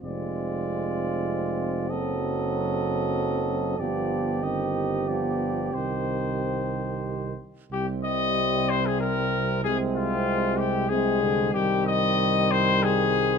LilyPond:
<<
  \new Staff \with { instrumentName = "Trumpet" } { \time 3/4 \key c \minor \tempo 4 = 95 d''2. | dis''2. | d''4 ees''4 d''4 | c''2~ c''8 r8 |
g'8 ees''4 c''16 aes'16 bes'4 | aes'8 f'4 g'8 aes'4 | g'8 ees''4 c''8 aes'4 | }
  \new Staff \with { instrumentName = "Flugelhorn" } { \time 3/4 \key c \minor f'2. | a'2. | g'2.~ | g'2~ g'8 r8 |
c'2. | c'2 c'4 | c'2. | }
  \new Staff \with { instrumentName = "French horn" } { \time 3/4 \key c \minor c'2.~ | c'2. | b4 c'4 b4 | c'2~ c'8 r8 |
g2. | aes2 aes4 | g2. | }
  \new Staff \with { instrumentName = "Trombone" } { \clef bass \time 3/4 \key c \minor aes2. | fis2. | f4 ees4 f4 | ees2~ ees8 r8 |
c2. | c2 c8 d8 | ees2. | }
  \new Staff \with { instrumentName = "Tuba" } { \clef bass \time 3/4 \key c \minor f,,2. | fis,,2. | g,,2. | c,2~ c,8 r8 |
c,2.~ | c,2. | c,2. | }
>>